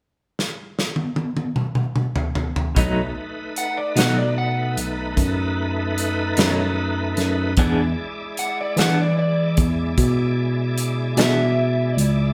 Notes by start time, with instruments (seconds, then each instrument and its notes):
0.39 snare
0.79 snare
0.96 high tom
1.16 high tom
1.37 high tom
1.56 mid tom
1.75 mid tom
1.96 mid tom
2.16 floor tom
2.35 floor tom
2.56 floor tom
2.75 tine electric piano B1, clean electric guitar B2 F#3 A3 D#4, tonewheel organ A3 D#4 B4, kick, closed hi-hat
3.56 electric slide guitar F#5, closed hi-hat
3.77 electric slide guitar D5
3.96 tine electric piano B2, clean electric guitar B2 F#3 A3 D#4, electric slide guitar F#5, snare, closed hi-hat
4.18 electric slide guitar D5
4.38 electric slide guitar F#5
4.77 tine electric piano B1, closed hi-hat
5.17 tine electric piano F#2, kick, closed hi-hat
5.98 closed hi-hat
6.37 tine electric piano F#2, clean electric guitar B2 F#3 A3 D#4, snare, closed hi-hat
7.17 tine electric piano F#2, snare, closed hi-hat
7.57 tine electric piano E2, clean electric guitar E3 B3 D4 G#4, tonewheel organ G#3 E4 D5, kick, closed hi-hat
8.37 electric slide guitar F#5, closed hi-hat
8.61 electric slide guitar D5
8.76 tine electric piano E3, clean electric guitar E3 B3 D4 G#4, electric slide guitar F#5, snare, closed hi-hat
9.02 electric slide guitar D5
9.19 electric slide guitar D5
9.57 tine electric piano E2, kick, closed hi-hat
9.98 tine electric piano B2, kick, closed hi-hat
10.78 closed hi-hat
11.17 tine electric piano B2, clean electric guitar E3 B3 D4 G#4, electric slide guitar E5, snare, closed hi-hat
11.95 tine electric piano C#2, electric slide guitar D5, closed hi-hat